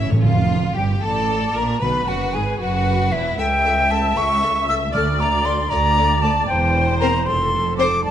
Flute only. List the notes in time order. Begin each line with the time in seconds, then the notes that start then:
0.24 F5
0.77 G5
1.05 A5
1.58 A#5
1.82 B5
2.08 F#5
2.34 G#5
2.60 F#5
3.12 E5
3.39 G5
3.91 A5
4.17 C#6
4.68 E6
4.94 F6
5.20 A#5
5.45 C6
5.69 A#5
6.22 A5
6.47 G5
6.99 A#5
7.26 C6
7.78 D6
8.05 A5